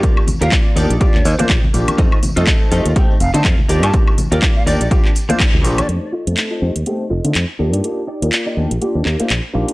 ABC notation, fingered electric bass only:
X:1
M:4/4
L:1/16
Q:"Swing 16ths" 1/4=123
K:Eblyd
V:1 name="Fingered electric bass" clef=bass
z3 E,, z2 E,, B,,, z E,, E,, z B,,, z B,,, z | F,, z2 F,, z2 F,, E,, z2 F,,, D, F,, z E,, G,, | z3 E,, z2 E,, B,,, z4 z E,, B,,, z | F,, z2 F,, z2 F,, E,, z2 F,,, D, F,, z E,, G,, |
z3 E,, z2 E,, B,,, z E,, E,, z B,,, z B,,, z |]